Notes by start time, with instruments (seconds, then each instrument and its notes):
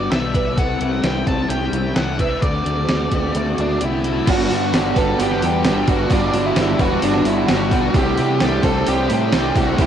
Already playing: overdriven electric guitar G3 B3 D4, clean electric guitar B3 D4, twelve-string acoustic guitar F#4, lead electric guitar D5
0.11 fingered electric bass B1, overdriven electric guitar D3 G3 B3 D4, twelve-string acoustic guitar A4, lead electric guitar E5, snare, closed hi-hat
0.34 overdriven electric guitar G3 B3 D4, twelve-string acoustic guitar B4, kick, closed hi-hat
0.57 fingered electric bass C2, overdriven electric guitar C3 G3 C4 E4, clean electric guitar A3, twelve-string acoustic guitar A4, lead electric guitar F#5, kick, closed hi-hat
0.81 fingered electric bass C2, overdriven electric guitar G3 C4 E4, closed hi-hat
1.03 fingered electric bass C2, overdriven electric guitar C3 G3 C4 E4, twelve-string acoustic guitar B4, lead electric guitar G5, snare, closed hi-hat
1.27 fingered electric bass C2, overdriven electric guitar G3 C4 E4, twelve-string acoustic guitar A4, lead electric guitar A5, kick, closed hi-hat
1.49 fingered electric bass C2, twelve-string acoustic guitar G4, lead electric guitar G5, closed hi-hat
1.72 fingered electric bass C2, closed hi-hat
1.95 fingered electric bass C2, overdriven electric guitar C3 G3 C4 E4, twelve-string acoustic guitar A4, lead electric guitar F#5, snare, closed hi-hat
2.18 overdriven electric guitar G3 C4 E4, twelve-string acoustic guitar B4, lead electric guitar E5, kick, closed hi-hat
2.41 fingered electric bass D2, overdriven electric guitar D3 A3 C4 F#4, clean electric guitar D3 A3 C4, lead electric guitar D5, kick, closed hi-hat
2.64 fingered electric bass D2, overdriven electric guitar A3 C4 F#4, closed hi-hat
2.87 fingered electric bass D2, overdriven electric guitar D3 A3 C4 F#4, twelve-string acoustic guitar A4, snare, closed hi-hat
3.10 fingered electric bass D2, overdriven electric guitar A3 C4 F#4, twelve-string acoustic guitar G4, kick, closed hi-hat
3.35 fingered electric bass D2, twelve-string acoustic guitar F#4, closed hi-hat
3.58 fingered electric bass D2, lead electric guitar D4, closed hi-hat
3.80 fingered electric bass C2, overdriven electric guitar D3 A3 C4 F#4, twelve-string acoustic guitar G4, closed hi-hat
3.85 lead electric guitar E4
4.03 overdriven electric guitar A3 C4 F#4, twelve-string acoustic guitar A4, closed hi-hat
4.26 fingered electric bass G1, overdriven electric guitar G2 D3 G3 B3 D4, clean electric guitar G3 B3 D4 F#4, twelve-string acoustic guitar F#4, kick, open hi-hat, crash
4.30 lead electric guitar F#4
4.49 fingered electric bass G2, overdriven electric guitar G3 B3 D4, clean electric guitar B3 D4 F#4, open hi-hat
4.72 fingered electric bass G1, overdriven electric guitar D3 G3 B3 D4, clean electric guitar G3 B3 D4 F#4, twelve-string acoustic guitar G4, snare, open hi-hat
4.95 fingered electric bass G1, overdriven electric guitar G2 D3 G3, clean electric guitar B3 D4 F#4, lead electric guitar A4, twelve-string acoustic guitar B4, kick, open hi-hat
5.18 fingered electric bass G1, overdriven electric guitar G2 D3 G3 B3 D4, clean electric guitar G3 B3 D4 F#4, lead electric guitar G4, twelve-string acoustic guitar F#5, open hi-hat
5.31 snare
5.41 fingered electric bass E2, clean electric guitar B3 D4 F#4, open hi-hat
5.64 fingered electric bass G1, overdriven electric guitar G2 D3 G3 B3 D4, clean electric guitar G3 B3 D4 F#4, twelve-string acoustic guitar G4, snare, open hi-hat
5.87 fingered electric bass G1, clean electric guitar B3 D4 F#4, twelve-string acoustic guitar F#4, lead electric guitar F#4, kick, open hi-hat
6.10 fingered electric bass G1, overdriven electric guitar G2 D3 G3 B3, clean electric guitar G3 B3 D4 F#4, lead electric guitar D4, twelve-string acoustic guitar F#4, kick, open hi-hat
6.14 overdriven electric guitar D4
6.33 fingered electric bass G1, overdriven electric guitar G3 B3 D4, clean electric guitar B3 D4 F#4, open hi-hat
6.46 lead electric guitar E4
6.56 fingered electric bass G1, overdriven electric guitar D3 G3 B3 D4, clean electric guitar G3 B3 D4 F#4, twelve-string acoustic guitar G4, snare, open hi-hat
6.78 fingered electric bass E1, overdriven electric guitar D3 G3, clean electric guitar B3 D4 F#4, lead electric guitar F#4, twelve-string acoustic guitar B4, kick, open hi-hat
6.82 overdriven electric guitar G2
7.02 fingered electric bass G1, overdriven electric guitar G2 D3 G3 B3 D4, clean electric guitar G3 B3 D4 F#4, lead electric guitar D4, twelve-string acoustic guitar F#4, open hi-hat
7.14 snare
7.25 fingered electric bass G1, clean electric guitar B3 D4 F#4, lead electric guitar E4, open hi-hat
7.47 fingered electric bass G1, overdriven electric guitar G2 D3 G3 B3, clean electric guitar G3 B3 D4 F#4, lead electric guitar F#4, twelve-string acoustic guitar G4, snare, open hi-hat
7.52 overdriven electric guitar D4
7.71 fingered electric bass B1, clean electric guitar B3 D4 F#4, twelve-string acoustic guitar F#4, kick, open hi-hat
7.94 fingered electric bass C2, clean electric guitar C3 E3 A3 D4 G4, overdriven electric guitar C3 G3 C4 E4, twelve-string acoustic guitar G4, lead electric guitar G4, kick, open hi-hat
8.17 fingered electric bass C3, clean electric guitar A3 D4 G4, overdriven electric guitar C4 E4, open hi-hat
8.22 overdriven electric guitar G3
8.40 fingered electric bass C2, overdriven electric guitar C3 G3 C4 E4, clean electric guitar E3 A3 D4 G4, lead electric guitar G4, twelve-string acoustic guitar A4, snare, open hi-hat
8.63 fingered electric bass C2, overdriven electric guitar C3 G3 C4, clean electric guitar A3 D4 G4, lead electric guitar A4, twelve-string acoustic guitar C5, kick, open hi-hat
8.86 fingered electric bass C2, overdriven electric guitar C3 G3 C4 E4, clean electric guitar C3 E3 A3 D4 G4, twelve-string acoustic guitar G4, lead electric guitar G4, open hi-hat
9.10 fingered electric bass A2, clean electric guitar A3 D4 G4, open hi-hat
9.32 fingered electric bass C2, overdriven electric guitar C3 G3 C4 E4, clean electric guitar E3 A3 D4 G4, twelve-string acoustic guitar A4, snare, open hi-hat
9.55 fingered electric bass C2, clean electric guitar A3 D4 G4, lead electric guitar F#4, twelve-string acoustic guitar G4, kick, open hi-hat
9.78 fingered electric bass C2, overdriven electric guitar C3 G3 C4 E4, clean electric guitar C3 E3 A3 D4 G4, lead electric guitar E4, twelve-string acoustic guitar G4, kick, open hi-hat